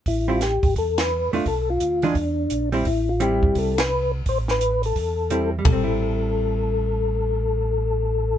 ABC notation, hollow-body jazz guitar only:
X:1
M:4/4
L:1/8
Q:"Swing" 1/4=172
K:Am
V:1 name="Hollow-body jazz guitar"
z [G,CE] z4 z [A,DF] | z3 [E,^G,DF] z3 [=G,CE] | z2 [G,CE]3 z3 | z6 [G,CE] z |
[G,CE]8- | [G,CE]8 |]